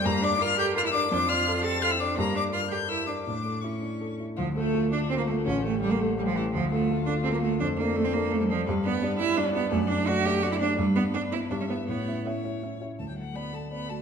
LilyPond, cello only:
\new Staff \with { instrumentName = "Cello" } { \time 3/4 \key d \minor \tempo 4 = 168 bes8 d'8 f'8 g'8 f'16 e'16 d'8 | d'8 f'4 a'8 f'16 e'16 d'8 | bes8 d'8 f'8 g'8 e'8 d'8 | d'4 cis'4. r8 |
f8 a4 d'8 c'16 bes16 a8 | cis'8 a8 g16 bes16 a8 g16 f16 e8 | f8 a4 d'8 c'16 bes16 a8 | d'8 bes8 a16 c'16 bes8 a16 g16 f8 |
\key d \major g8 b4 e'8 d'16 cis'16 b8 | a8 d'8 fis'8 g'8 fis'16 e'16 d'8 | g8 b8 d'8 e'8 d'16 cis'16 b8 | b4 a4 r4 |
a16 g16 fis8 b8 a8 b8 a8 | }